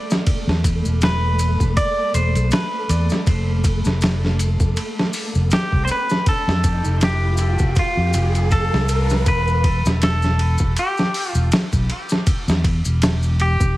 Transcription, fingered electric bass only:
0.47 E2
0.86 E1
1.60 E1
2.14 E1
2.35 B1
2.89 E2
3.27 F1
3.86 F1
4.60 F1
5.35 F1
5.73 C2
6.47 F2
6.85 F1
7.60 F1
7.97 F2
8.14 F1
8.73 C2
9.27 E1
9.85 E1
10.60 E1
11.35 E1
11.73 B1
12.48 E2
12.86 E1
13.61 E1

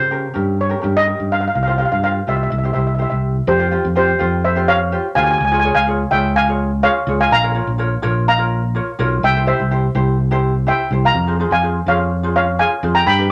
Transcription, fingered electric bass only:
0.00 C#3
0.36 G2
0.84 G2
1.20 G2
1.55 C2
1.92 G2
2.28 C2
2.52 C2
2.75 C2
3.12 C2
3.47 F2
3.85 F2
4.21 F2
5.16 D2
5.40 C#2
5.75 C#2
6.12 C#2
7.07 C#2
7.31 A#1
7.67 A#1
8.03 A#1
8.99 B1
9.23 C2
9.60 C2
9.95 C2
10.91 C2
11.14 F2
11.51 F2
11.86 F2
12.83 F2
13.06 G2

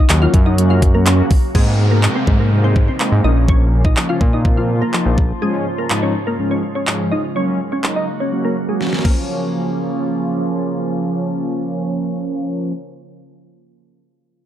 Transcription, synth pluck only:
0.22 F4 F5
0.46 D#4 D#5
0.70 F4 F5
0.95 A#3 A#4
1.55 G#3 G#4
1.91 A#3 A#4
2.15 C4 C5
2.40 A#3 A#4
2.64 C4 C5
2.88 C4 C5
3.24 D#4 D#5
3.49 C#4 C#5
3.85 D#4 D#5
4.09 F4 F5
4.33 D#4 D#5
4.57 F4 F5
4.82 A#3 A#4
5.42 G#3 G#4
5.78 A#3 A#4
6.03 C#4 C#5
6.27 A#3 A#4
6.51 C#4 C#5
6.75 C#4 C#5
7.12 D#4 D#5
7.36 C#4 C#5
7.72 C#4 C#5
7.96 D#4 D#5
8.20 C#4 C#5
8.45 A#3 A#4
8.69 G#3 G#4
9.05 A#3

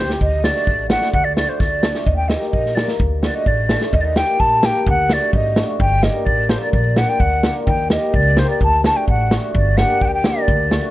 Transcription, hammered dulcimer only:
0.43 A3 D4 F#4
0.91 A3 D4 F#4
1.36 A3 D4 F#4
1.83 A3 D4 A4
2.29 A#3 D#4 G4
2.75 A#3 D#4 A#4
3.22 A3 D4 F#4
3.70 A3 D4 A4
4.17 A#3 D#4 G4
4.64 A#3 D#4 G4
5.10 A3 D4 F#4
5.56 A3 D4 F#4
6.04 A#3 D4 G4
6.50 A#3 D4 A4
6.96 A#3 D4 F4
7.44 A#3 D4 F4
7.90 A#3 D#4 G4
8.36 A#3 D#4 G4
8.83 A3 D4 F#4
9.31 A3 D4 F#4
9.78 A#3 D4 G4
10.25 A#3 D4 G4
10.71 A3 D4 F#4

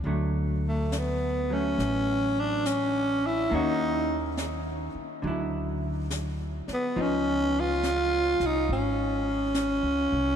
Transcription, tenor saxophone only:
0.68 A3
0.98 B3
1.53 C#4
2.40 D4
2.66 C#4
3.26 E4
3.54 D#4
6.73 B3
7.02 C#4
7.60 F4
8.46 D#4
8.73 C#4

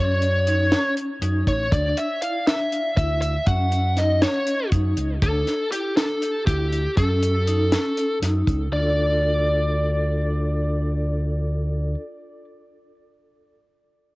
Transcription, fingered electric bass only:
Already playing: F#2
1.22 F#2
1.47 A1
1.72 D2
2.97 D2
3.47 F#2
4.72 F#2
4.97 C#2
5.22 D2
6.47 D2
6.97 F#2
8.22 F#2
8.47 C#2
8.72 D2

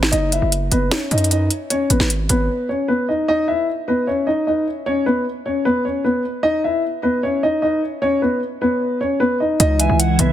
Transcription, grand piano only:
0.12 D#4 D#5
0.33 E4 E5
0.72 B3 B4
0.92 C#4 C#5
1.12 D#4 D#5
1.31 D#4 D#5
1.70 C#4 C#5
1.90 B3 B4
2.30 B3 B4
2.69 C#4 C#5
2.88 B3 B4
3.09 D#4 D#5
3.28 D#4 D#5
3.48 E4 E5
3.88 B3 B4
4.07 C#4 C#5
4.27 D#4 D#5
4.47 D#4 D#5
4.86 C#4 C#5
5.06 B3 B4
5.46 C#4 C#5
5.65 B3 B4
5.85 C#4 C#5
6.04 B3 B4
6.43 D#4 D#5
6.64 E4 E5
7.03 B3 B4
7.23 C#4 C#5
7.43 D#4 D#5
7.62 D#4 D#5
8.02 C#4 C#5
8.22 B3 B4
8.62 B3 B4
9.01 C#4 C#5
9.20 B3 B4
9.40 D#4 D#5
9.60 D#4 D#5
9.79 E4 E5
10.20 B3 B4

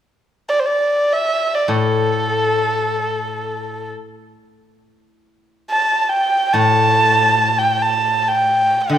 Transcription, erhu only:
0.49 D5
0.59 C5
0.66 D5
1.12 E5
1.55 D5
1.70 A4
5.70 A5
6.01 A5
6.09 G5
6.52 A5
7.58 G5
7.82 A5
8.28 G5
8.93 D5

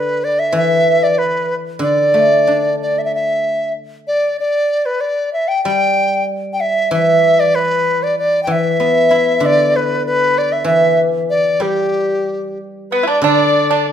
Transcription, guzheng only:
Already playing: D3
0.53 E3
1.79 D3
2.14 A3
2.47 D4
5.65 G3
6.91 E3
8.47 E3
8.80 B3
9.11 E4
9.40 D3
10.64 E3
11.60 G3
13.22 D3

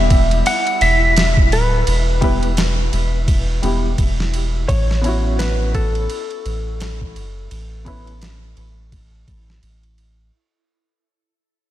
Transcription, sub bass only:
Already playing: E1
0.81 E1
1.51 D1
1.87 E1
2.93 E1
3.63 E1
3.98 E1
4.69 A1
6.46 A1
7.16 F#1
7.51 A1
8.57 A1
9.28 A1
9.63 A1

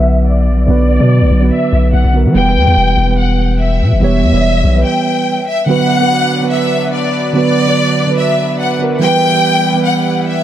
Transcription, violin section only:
Already playing: E5
0.27 D5
0.68 D5
1.52 E5
1.93 F#5
2.35 G5
3.18 F#5
3.60 E5
4.01 E5
4.85 G5
5.47 E5
5.68 F#5
6.52 E5
6.93 D5
7.35 D5
8.18 E5
8.60 F#5
9.02 G5
9.85 F#5
10.27 E5

